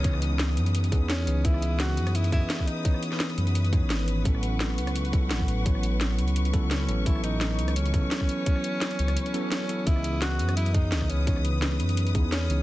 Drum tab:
HH |x-x-x-xxxxx-x-x-|x-x-x-xxxxx-x-x-|x-x-xxxxxxx-xxx-|x-x-x-xxxxx-x-x-|
SD |-r--o-------o---|-r--o--r----or--|-r-oo-------o---|-r--o--r----or--|
BD |o---------o-----|o---------o--o--|o---------o-----|o---------o--o--|

HH |x-x-x-xxxxx-x-x-|x-x-x-xxxxx-x-x-|x-x-xxxxxxx-x-x-|x-x-x-xxxxx-x-x-|
SD |-r--o-------o---|-r--o--r----or--|-r--o--r----o---|-r--o--r----or--|
BD |o---------o-----|o---------o--o--|o---------------|o---------o--o--|

HH |x-x-x-xxxxx-x-x-|
SD |-r--o-------o---|
BD |o---------o-----|